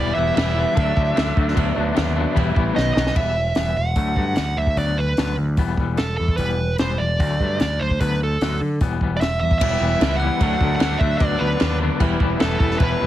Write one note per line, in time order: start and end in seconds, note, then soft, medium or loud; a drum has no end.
0.00 0.11 E1 loud
0.00 0.13 E3 loud
0.00 0.13 G3 loud
0.00 0.14 B3 loud
0.00 0.15 E4 loud
0.00 0.14 D5 loud
0.00 0.15 D6 medium
0.14 0.30 E1 medium
0.14 0.35 E3 medium
0.14 0.34 G3 medium
0.14 0.35 B3 loud
0.14 0.36 E4 medium
0.14 0.34 E5 medium
0.14 0.36 E6 medium
0.35 0.64 E1 loud
0.35 0.54 E3 medium
0.35 0.55 G3 medium
0.35 0.55 B3 medium
0.35 0.55 E4 loud
0.35 2.72 E5 medium
0.35 2.73 E6 medium
0.35 snare loud
0.35 crash medium
0.55 0.74 E3 loud
0.55 0.75 G3 loud
0.55 0.75 B3 loud
0.55 0.75 E4 loud
0.75 0.90 D2 medium
0.75 0.94 D3 loud
0.75 0.95 F#3 loud
0.75 0.94 A3 loud
0.75 0.95 D4 loud
0.75 kick loud
0.75 crash medium
0.95 1.10 D2 medium
0.95 1.14 D3 medium
0.95 1.15 F#3 medium
0.95 1.15 A3 medium
0.95 1.15 D4 loud
0.95 kick medium
1.15 1.31 D2 loud
1.15 1.35 D3 medium
1.15 1.35 F#3 loud
1.15 1.36 A3 medium
1.15 1.36 D4 loud
1.15 snare loud
1.15 crash medium
1.36 1.57 D2 medium
1.36 1.53 D3 medium
1.36 1.54 F#3 medium
1.36 1.55 A3 medium
1.36 1.55 D4 medium
1.36 kick medium
1.48 snare soft
1.55 1.70 D2 loud
1.55 1.74 D3 medium
1.55 1.74 F#3 medium
1.55 1.74 B3 loud
1.55 1.75 D4 loud
1.55 kick loud
1.55 crash medium
1.75 1.91 D2 medium
1.75 1.94 D3 medium
1.75 1.94 F#3 medium
1.75 1.94 B3 medium
1.75 1.95 D4 medium
1.95 2.24 D#2 loud
1.95 2.14 D3 medium
1.95 2.15 F#3 medium
1.95 2.15 B3 loud
1.95 2.15 D4 medium
1.95 snare loud
1.95 crash medium
2.15 2.34 D3 loud
2.15 2.34 F#3 medium
2.15 2.34 B3 loud
2.15 2.35 D4 loud
2.35 2.50 E1 medium
2.35 2.52 E3 loud
2.35 2.53 G3 loud
2.35 2.53 B3 loud
2.35 2.53 E4 loud
2.35 kick medium
2.35 crash medium
2.53 2.70 A1 medium
2.53 2.73 E3 medium
2.53 2.74 G3 medium
2.53 2.74 B3 medium
2.53 2.74 E4 loud
2.53 kick medium
2.74 2.90 B1 medium
2.74 2.93 B2 medium
2.74 2.94 D#3 medium
2.74 2.94 F#3 loud
2.74 2.94 B3 loud
2.74 2.95 D#4 medium
2.74 2.92 D#5 medium
2.74 snare medium
2.94 3.10 B1 medium
2.94 3.14 B2 medium
2.94 3.14 D#3 medium
2.94 3.14 F#3 medium
2.94 3.15 B3 medium
2.94 3.15 D#4 medium
2.94 3.14 D#5 medium
2.94 snare loud
3.07 snare loud
3.15 3.51 E1 medium
3.15 3.34 E3 medium
3.15 3.35 G3 medium
3.15 3.35 B3 medium
3.15 3.78 E5 medium
3.15 kick medium
3.15 crash medium
3.37 3.55 E3 soft
3.37 3.55 G3 medium
3.55 3.74 E1 medium
3.55 3.75 E3 medium
3.55 3.75 G3 medium
3.55 3.76 B3 medium
3.55 snare medium
3.55 open hi-hat soft
3.76 3.94 E1 medium
3.76 3.95 G3 medium
3.76 4.35 F#5 medium
3.96 4.14 D2 medium
3.96 4.15 D3 medium
3.96 4.16 F#3 medium
3.96 4.16 A3 medium
3.96 kick medium
3.96 open hi-hat soft
4.16 4.35 G2 medium
4.16 4.36 D3 medium
4.16 4.36 F#3 medium
4.16 4.36 A3 medium
4.16 kick medium
4.36 4.55 D2 medium
4.36 4.55 D3 soft
4.36 4.55 F#3 medium
4.36 4.58 F#5 medium
4.36 snare medium
4.36 open hi-hat soft
4.57 4.75 D2 medium
4.57 4.75 D3 soft
4.57 4.76 F#3 medium
4.57 4.78 E5 medium
4.67 kick medium
4.76 5.13 D2 medium
4.76 4.95 D3 medium
4.76 4.96 F#3 medium
4.76 4.97 B3 medium
4.76 4.99 D5 medium
4.76 kick medium
4.76 open hi-hat soft
4.97 5.15 D3 medium
4.97 5.16 F#3 medium
4.97 5.35 B4 medium
5.17 5.35 D2 medium
5.17 5.37 D3 medium
5.17 5.37 F#3 medium
5.17 5.37 B3 medium
5.17 snare medium
5.17 open hi-hat soft
5.38 5.55 D2 medium
5.38 5.56 D3 medium
5.38 5.56 F#3 medium
5.57 5.76 E1 medium
5.57 5.77 E3 medium
5.57 5.77 G3 medium
5.57 5.77 B3 loud
5.57 kick medium
5.57 open hi-hat soft
5.77 5.96 E1 medium
5.77 5.97 E3 medium
5.77 5.98 G3 medium
5.77 5.98 B3 medium
5.77 kick medium
5.97 6.16 E1 medium
5.97 6.17 E3 medium
5.97 6.16 A4 medium
5.97 snare medium
5.97 open hi-hat soft
6.17 6.37 E2 medium
6.17 6.37 E3 medium
6.17 6.37 G3 medium
6.17 6.37 A4 medium
6.28 kick medium
6.37 6.74 E1 medium
6.37 6.57 E3 medium
6.37 6.58 G3 medium
6.37 6.58 B3 medium
6.37 6.75 B4 medium
6.37 kick medium
6.37 open hi-hat soft
6.60 6.77 E3 medium
6.60 6.78 G3 medium
6.78 6.97 E1 medium
6.78 6.98 E3 medium
6.78 6.99 G3 medium
6.78 6.99 B3 medium
6.78 7.00 C5 medium
6.78 snare loud
6.78 open hi-hat soft
6.98 7.20 E1 medium
6.98 7.19 E3 medium
6.98 7.19 G3 medium
6.98 7.60 D5 medium
7.20 7.37 D2 medium
7.20 7.40 D3 medium
7.20 7.40 F#3 medium
7.20 7.40 A3 medium
7.20 kick medium
7.20 open hi-hat soft
7.40 7.58 G2 medium
7.40 7.59 D3 medium
7.40 7.60 F#3 medium
7.40 7.60 A3 medium
7.40 kick medium
7.60 7.78 D2 medium
7.60 7.79 F#3 medium
7.60 7.81 D5 medium
7.60 snare medium
7.60 open hi-hat soft
7.80 7.98 D2 medium
7.80 7.99 D3 medium
7.80 7.99 F#3 medium
7.80 8.00 C5 medium
7.90 kick medium
8.00 8.36 D2 medium
8.00 8.19 D3 medium
8.00 8.20 F#3 medium
8.00 8.20 B3 medium
8.00 8.19 B4 medium
8.00 kick medium
8.00 open hi-hat soft
8.21 8.39 D3 medium
8.21 8.39 F#3 medium
8.21 8.59 A4 medium
8.41 8.59 D2 medium
8.41 8.60 D3 medium
8.41 8.60 F#3 medium
8.41 8.60 B3 medium
8.41 snare medium
8.41 open hi-hat soft
8.61 8.78 D3 medium
8.61 8.79 D3 medium
8.61 8.79 F#3 medium
8.81 8.99 E1 medium
8.81 9.00 E3 medium
8.81 9.00 G3 medium
8.81 9.00 B3 loud
8.81 kick loud
8.81 open hi-hat soft
9.01 9.19 E1 medium
9.01 9.20 E3 medium
9.01 9.20 G3 medium
9.01 9.20 B3 medium
9.01 kick medium
9.17 9.38 E1 medium
9.17 9.20 D5 medium
9.21 9.39 E3 soft
9.21 9.39 E5 medium
9.21 9.40 E6 medium
9.21 snare medium
9.21 open hi-hat soft
9.40 9.59 E2 medium
9.40 9.59 E3 medium
9.40 9.60 G3 medium
9.40 9.57 E5 medium
9.40 9.59 E6 medium
9.51 kick medium
9.58 9.75 E1 medium
9.58 9.79 E3 medium
9.58 10.22 E5 loud
9.58 10.16 E6 medium
9.58 kick loud
9.58 crash loud
9.58 crash medium
9.63 9.80 G3 medium
9.63 9.80 B3 loud
9.63 9.81 E4 loud
9.63 9.80 G4 loud
9.80 9.94 E1 loud
9.80 10.00 E3 medium
9.80 10.01 G3 medium
9.80 10.01 B3 loud
9.80 10.02 E4 loud
9.80 10.02 G4 loud
10.01 10.28 C#2 loud
10.01 10.21 E3 medium
10.01 10.21 G3 medium
10.01 10.21 B3 medium
10.01 10.22 E4 medium
10.01 10.21 G4 loud
10.01 snare loud
10.01 crash medium
10.17 10.74 F#5 loud
10.17 10.76 F#6 medium
10.22 10.40 E3 loud
10.22 10.40 G3 medium
10.22 10.41 B3 loud
10.22 10.41 E4 loud
10.22 10.40 G4 loud
10.41 10.55 D2 loud
10.41 10.61 D3 loud
10.41 10.61 F#3 loud
10.41 10.62 A3 loud
10.41 10.62 D4 loud
10.41 kick medium
10.41 crash medium
10.61 10.75 D2 medium
10.61 10.80 D3 medium
10.61 10.81 F#3 medium
10.61 10.81 A3 medium
10.61 10.81 D4 medium
10.61 kick medium
10.76 10.99 F#5 medium
10.80 10.94 D2 medium
10.80 10.99 D3 medium
10.80 11.00 F#3 medium
10.80 11.00 A3 loud
10.80 11.01 D4 medium
10.80 10.99 F#6 medium
10.80 snare loud
10.80 crash medium
10.99 11.14 D2 medium
10.99 11.19 D3 medium
10.99 11.19 F#3 medium
10.99 11.20 A3 medium
10.99 11.20 D4 loud
10.99 11.18 E5 loud
10.99 11.19 E6 medium
10.99 kick loud
11.18 11.35 D2 loud
11.18 11.38 D3 loud
11.18 11.39 F#3 loud
11.18 11.38 B3 loud
11.18 11.39 D4 loud
11.18 11.40 D5 medium
11.18 11.40 D6 medium
11.18 kick loud
11.18 crash medium
11.39 11.54 D2 medium
11.39 11.58 D3 medium
11.39 11.59 F#3 medium
11.39 11.59 B3 medium
11.39 11.60 D4 loud
11.39 11.77 B4 medium
11.39 11.78 B5 medium
11.59 11.88 D#2 loud
11.59 11.78 D3 medium
11.59 11.79 F#3 medium
11.59 11.79 B3 medium
11.59 11.80 D4 medium
11.59 snare loud
11.59 crash medium
11.79 11.99 D3 loud
11.79 11.99 F#3 loud
11.79 11.99 B3 loud
11.79 11.99 D4 loud
11.99 12.14 E1 loud
11.99 12.19 E3 loud
11.99 12.19 G3 loud
11.99 12.19 B3 loud
11.99 12.20 E4 loud
11.99 kick medium
11.99 crash medium
12.20 12.34 E1 medium
12.20 12.37 E3 medium
12.20 12.38 G3 medium
12.20 12.38 B3 medium
12.20 12.39 E4 medium
12.20 kick medium
12.39 12.55 E1 loud
12.39 12.58 E3 medium
12.39 12.59 G3 loud
12.39 12.59 B3 medium
12.39 12.59 E4 loud
12.39 12.58 A4 medium
12.39 snare loud
12.39 crash medium
12.45 12.62 A5 medium
12.59 12.74 E1 loud
12.59 12.78 E3 medium
12.59 12.79 G3 medium
12.59 12.79 B3 medium
12.59 12.79 E4 medium
12.59 12.78 A4 medium
12.59 12.80 A5 medium
12.59 kick loud
12.71 snare soft
12.79 12.94 E1 loud
12.79 12.98 E3 medium
12.79 12.99 G3 medium
12.79 12.99 B3 loud
12.79 12.99 E4 loud
12.79 13.07 B4 loud
12.79 kick loud
12.79 crash medium
12.83 13.07 B5 loud
12.99 13.07 E1 medium
12.99 13.07 E3 medium
12.99 13.07 G3 medium
12.99 13.07 B3 medium
12.99 13.07 E4 medium